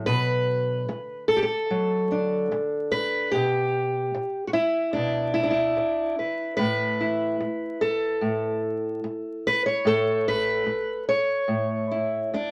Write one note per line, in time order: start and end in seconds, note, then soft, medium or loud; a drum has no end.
0.00 3.34 D3 medium
0.00 0.87 F#3 soft
0.06 0.88 B2 medium
0.06 1.28 B4 loud
0.89 muted steel-string acoustic guitar stroke medium
1.28 1.41 A4 medium
1.37 1.44 G4 medium
1.43 2.91 A4 medium
1.70 2.51 F#3 medium
2.11 3.29 D4 soft
2.51 muted steel-string acoustic guitar stroke medium
2.92 3.33 B4 loud
3.31 4.13 B2 medium
3.31 4.47 G4 loud
4.14 muted steel-string acoustic guitar stroke medium
4.47 4.53 F#4 medium
4.53 5.33 E4 medium
4.93 5.76 B2 medium
4.93 5.42 D4 medium
5.34 5.49 E4 medium
5.43 6.18 D4 medium
5.51 6.58 E4 medium
5.77 muted steel-string acoustic guitar stroke medium
6.19 6.56 B4 soft
6.57 7.40 A2 medium
6.57 8.61 B4 loud
7.01 9.81 E4 soft
7.40 muted steel-string acoustic guitar stroke medium
7.81 9.86 A4 medium
8.21 9.03 A2 medium
9.04 muted steel-string acoustic guitar stroke medium
9.47 9.66 B4 loud
9.66 10.27 C#5 loud
9.85 10.65 A2 medium
9.85 11.09 A4 medium
10.28 11.08 B4 loud
10.66 muted steel-string acoustic guitar stroke medium
11.09 12.33 C#5 medium
11.48 12.32 A2 medium
11.91 12.51 E4 soft
12.34 12.51 D4 medium
12.34 muted steel-string acoustic guitar stroke medium